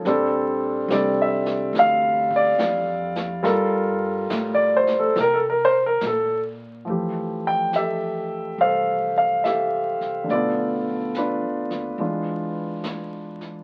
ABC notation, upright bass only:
X:1
M:4/4
L:1/8
Q:"Swing" 1/4=70
K:F
V:1 name="Upright bass" clef=bass
B,,,2 C,,2 D,,2 F,,2 | G,,2 A,,2 C,2 B,,2 | F,,4 C,,3 C,, | =B,,,2- (3B,,, D,, _E,, =E,,4 |]